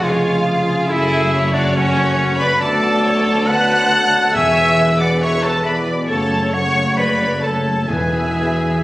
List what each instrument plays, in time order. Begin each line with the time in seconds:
Already playing: double bass section F1, cello section F2, trombone section C#3 G#3, french horn section C#4 G#4
0.02 violin section F4 F5, oboe F4, trumpet F4, flute G#4, viola section C#5
0.47 viola section G#4
0.89 double bass section F#1, cello section F#2, trombone section A3, violin section E4 E5, oboe E4, trumpet E4, french horn section F#4, flute G#4, viola section A4
1.32 viola section C#5
1.52 violin section D4 D5, oboe D4, trumpet D4, flute F#4
1.74 oboe C#4, trumpet C#4, violin section C#4 C#5, flute F#4
2.38 oboe B4, violin section B4 B5, trumpet B4, flute D5
2.60 double bass section D2, cello section D2, trombone section D3 F#3, french horn section B3 F#4, oboe A4, violin section A4 A5, trumpet A4, flute D5, viola section D5
3.03 viola section C#5
3.46 trombone section D3 F#3, french horn section B3 F#4, viola section B4, oboe F#5, violin section F#5 F#6, trumpet F#5, flute A5
3.91 viola section A4
4.32 double bass section E1, cello section E2, timpani E2, french horn section B3 G#4, viola section C#5, oboe E5, violin section E5 E6, trumpet E5, flute G#5
4.36 trombone section B2 E3
4.78 viola section B4
4.99 violin section D5 D6, oboe D5, trumpet D5, flute F#5
5.21 oboe C#5, trumpet C#5, violin section C#5 C#6, flute E5
5.42 oboe A4, trumpet A4, violin section A4 A5, flute C#5
5.63 trombone section B2 E3, french horn section B3 G#4, oboe B4, trumpet B4, violin section B4 B5, viola section D5, flute E5
6.07 double bass section F#1, cello section F#2, trombone section C#3 F#3, french horn section A3 A4, oboe A4, violin section A4 A5, trumpet A4, viola section C#5, flute C#5
6.52 trombone section C#3 F#3, french horn section A3 A4, oboe C#5, violin section C#5 C#6, trumpet C#5, flute F#5
6.96 oboe B4, trumpet B4, violin section B4 B5, flute D5
7.42 trombone section C#3 F#3, french horn section A3 A4, viola section A4, oboe A4, trumpet A4, violin section A4 A5, flute C#5
7.88 double bass section E1, cello section E2, timpani E2, trombone section B2 E3, french horn section B3 E4, oboe G#4, violin section G#4 G#5, trumpet G#4, flute B4, viola section E5